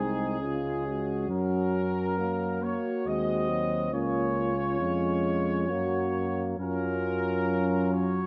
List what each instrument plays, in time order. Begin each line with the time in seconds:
Already playing: tuba C2, trombone G#3, euphonium C4, french horn section D#4, trumpet section G#4
0.40 tuba C#2, trombone G#3, euphonium C#4, french horn section F4
0.86 french horn section F#4
1.29 tuba F#2, trombone F#3, euphonium C#4, trumpet section A#4
2.17 trombone F#3, euphonium A#3, french horn section F#4
2.62 trombone A#3, trumpet section C#5
3.06 tuba D#2, trombone G#3, euphonium C4, trumpet section D#5
3.49 trombone F#3
3.92 tuba C#2, trombone A#3, euphonium C#4, french horn section F4, trumpet section C#5
4.80 tuba F2, trombone G#3, euphonium C#4
5.69 tuba F#2, trombone F#3, euphonium A#3, french horn section F#4
6.59 tuba F#2, trombone F#3, euphonium C#4, french horn section F4, trumpet section A#4
7.93 trumpet section C#5